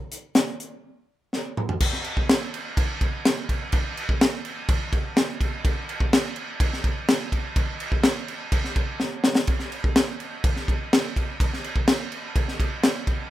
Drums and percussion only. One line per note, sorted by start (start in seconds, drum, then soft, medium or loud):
0.12 closed hi-hat medium
0.35 snare loud
0.35 closed hi-hat medium
0.60 closed hi-hat medium
1.33 snare soft
1.57 mid tom medium
1.69 floor tom medium
1.80 kick loud
1.80 crash loud
1.80 crash medium
1.93 snare soft
2.04 crash medium
2.17 kick medium
2.29 snare loud
2.29 crash medium
2.54 crash medium
2.77 kick loud
2.77 crash medium
3.01 kick medium
3.01 crash medium
3.25 snare loud
3.25 crash medium
3.49 kick medium
3.49 crash medium
3.72 kick loud
3.72 crash medium
3.97 crash medium
4.09 kick medium
4.21 snare loud
4.21 crash medium
4.45 crash medium
4.69 kick loud
4.69 crash medium
4.93 kick medium
4.93 crash medium
5.17 snare loud
5.17 crash medium
5.41 kick medium
5.41 crash medium
5.65 kick loud
5.65 crash medium
5.89 crash medium
6.00 kick medium
6.13 snare loud
6.13 crash medium
6.36 crash medium
6.60 kick loud
6.60 crash medium
6.73 snare soft
6.84 kick medium
6.84 crash medium
7.08 snare loud
7.08 crash medium
7.32 kick medium
7.32 crash medium
7.56 kick loud
7.56 crash medium
7.80 crash medium
7.92 kick medium
8.03 snare loud
8.03 crash medium
8.28 crash medium
8.52 kick loud
8.52 crash medium
8.64 snare soft
8.76 kick medium
8.76 crash medium
9.00 snare medium
9.24 snare loud
9.35 snare medium
9.47 kick loud
9.47 crash medium
9.59 snare soft
9.72 crash medium
9.84 kick medium
9.96 snare loud
9.96 crash medium
10.20 crash medium
10.44 kick loud
10.44 crash medium
10.56 snare soft
10.68 kick medium
10.68 crash medium
10.93 snare loud
10.93 crash medium
11.16 kick medium
11.16 crash medium
11.40 kick loud
11.40 crash medium
11.53 snare soft
11.64 crash medium
11.76 kick medium
11.88 snare loud
11.88 crash medium
12.12 crash medium
12.36 kick loud
12.36 crash medium
12.48 snare soft
12.60 kick medium
12.60 crash medium
12.83 snare loud
12.83 crash medium
13.07 kick medium
13.07 crash medium